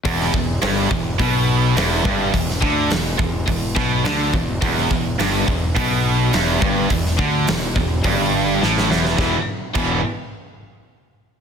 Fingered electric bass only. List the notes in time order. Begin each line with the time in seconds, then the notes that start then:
0.05 E1
0.34 E1
0.63 G1
0.91 E1
1.20 B1
1.76 E1
2.06 G1
2.34 E1
2.63 D2
2.92 E1
3.19 E1
3.48 E1
3.77 B1
4.05 D2
4.34 E1
4.62 E1
4.91 E1
5.19 G1
5.48 E1
5.76 B1
6.34 E1
6.62 G1
6.91 E1
7.19 D2
7.48 E1
7.76 E1
8.05 G1
8.63 A1
8.91 E1
9.18 E1
9.75 E1